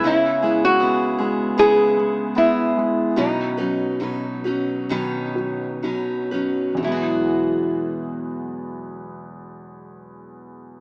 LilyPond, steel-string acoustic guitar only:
\new Staff \with { instrumentName = "Steel-string acoustic guitar" } { \time 4/4 \key e \major \tempo 4 = 67 <cis gis b e' gis'>8 <b e' gis'>8 <gis b e' gis'>8 <b e' gis'>8 <cis gis b e' gis'>4 <gis b e' gis'>4 | <b, dis fis cis' dis' b'>8 <fis cis' dis' b'>8 <fis cis' dis' b'>8 <fis cis' dis' b'>8 <b, dis fis cis' dis' b'>4 <fis cis' dis' b'>8 <fis cis' dis' b'>8 | <e fis b fis' gis'>1 | }